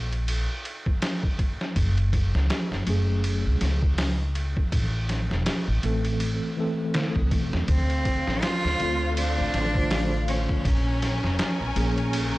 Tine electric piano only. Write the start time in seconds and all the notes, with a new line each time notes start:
2.86 F#3 A3 C#4 G#4
5.83 E3 A3 C4 A4
6.57 E3 A3 C4 A4
8.79 D3 A3 C4 F4
9.74 D3 A3 F4 C5
11.76 F3 A#3 C#4 G#4